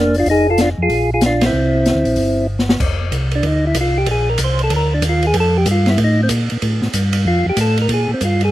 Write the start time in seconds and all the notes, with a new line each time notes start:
Already playing: F1 D4
0.00 A#3
0.14 D4, open hi-hat
0.20 F4
0.26 F1 D#4, kick, open hi-hat
0.31 G#4
0.50 F4 A4
0.58 D4 F4, snare, closed hi-hat
0.78 F2
0.82 F4 G#4
0.89 A#1, kick, open hi-hat
1.14 F4 G#4
1.21 snare, closed hi-hat
1.26 D4 F4
1.41 C4, snare, ride
1.46 E4
1.53 C2
1.86 snare, closed hi-hat
1.95 D2
2.05 A#1, open hi-hat
2.16 G1, kick, open hi-hat
2.59 snare
2.69 snare
2.80 F1, kick, crash
3.12 C2, kick, hi-hat pedal, ride
3.31 D4, ride
3.43 D2 D#4, kick, ride
3.67 E4
3.74 C2, kick, hi-hat pedal, ride
3.81 F4
3.98 G4
4.06 A#1, kick, ride
4.11 G#4
4.29 A#4
4.38 C2, kick, hi-hat pedal, ride
4.44 C5
4.59 ride
4.64 A4
4.70 D2, kick, ride
4.76 A#4
4.94 D4
5.02 D#2, kick, hi-hat pedal, ride
5.09 F4
5.23 ride
5.27 G#4
5.34 F2, kick, ride
5.40 A4
5.58 G4
5.66 G2, kick, hi-hat pedal, ride
5.71 F4
5.86 E4, snare, ride
5.98 A2, kick, ride
6.04 D#4
6.23 C4
6.29 A#2, kick, hi-hat pedal, ride
6.50 A#2, ride
6.62 A2, kick, ride
6.82 A2, snare
6.93 G2, kick, hi-hat pedal, ride
7.13 ride
7.25 F2 F4, kick
7.46 F2 G4
7.57 A2, kick, hi-hat pedal, ride
7.61 A4
7.78 ride
7.82 A#4
7.89 A#2, kick, ride
7.94 G#4
8.09 A#2
8.14 C4
8.21 G2, kick, hi-hat pedal, ride
8.25 F4
8.41 G#4, ride